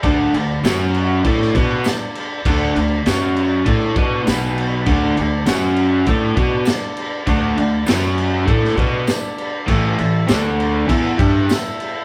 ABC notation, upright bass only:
X:1
M:4/4
L:1/8
Q:1/4=100
K:Dlyd
V:1 name="Upright bass" clef=bass
D,, D,, F,,2 A,, B,, z2 | D,, D,, F,,2 A,, B,, B,,,2 | D,, D,, F,,2 A,, B,, z2 | D,, D,, F,,2 A,, B,, z2 |
A,,, A,,, D,,2 E,, =G,, z2 |]